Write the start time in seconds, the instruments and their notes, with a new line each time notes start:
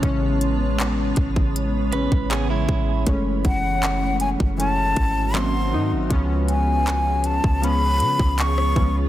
Already playing: synth keys E3 G#3 C#4, ambient pad G#3 B3 C#5
0.00 808-style bass A1, synth keys C#3 E3 G#3, ambient pad B5, kick, closed hi-hat
0.04 synth keys C#4
0.41 closed hi-hat
0.80 clap, closed hi-hat
1.16 808-style bass A1, kick, closed hi-hat
1.36 kick
1.56 closed hi-hat
1.92 synth keys C#3 E3 G#3 C#4, clean electric guitar B4, closed hi-hat
2.12 808-style bass A1, kick
2.31 clean electric guitar B3 G#4, clap, closed hi-hat
2.50 clean electric guitar G#3 E4
2.69 808-style bass A1, kick
3.06 808-style bass F#1, synth keys E3 G#3 A3 C#4, ambient pad C#4 F#4 E5 F#5, kick, closed hi-hat
3.45 808-style bass F#1, flute F#5, kick, closed hi-hat
3.83 clap, closed hi-hat
4.20 flute G#5, closed hi-hat
4.40 808-style bass F#1, kick
4.57 synth keys E3 G#3 A3 C#4, flute A5, closed hi-hat
4.96 808-style bass G#1, kick, closed hi-hat
5.33 synth keys D#3 F#3 A#3 C4, ambient pad G#4, flute C6, clap, closed hi-hat
5.71 808-style bass G#2, synth keys D#3 F#3 A#3 D#4
5.92 808-style bass G#1
6.09 808-style bass C#2, synth keys F3 G#3 B3 C#4, ambient pad B3 F4 C#5, kick, closed hi-hat
6.48 flute G#5, closed hi-hat
6.87 clap, closed hi-hat
7.24 flute A5, closed hi-hat
7.44 808-style bass C#2, kick
7.62 synth keys F3 G#3 B3 C#4, flute B5, closed hi-hat
8.00 808-style bass C#3, closed hi-hat
8.19 808-style bass C#2, kick, cross-stick
8.39 flute C#6, clap, closed hi-hat
8.58 cross-stick
8.75 808-style bass C#2, synth keys F3 G#3 B3 C#4, kick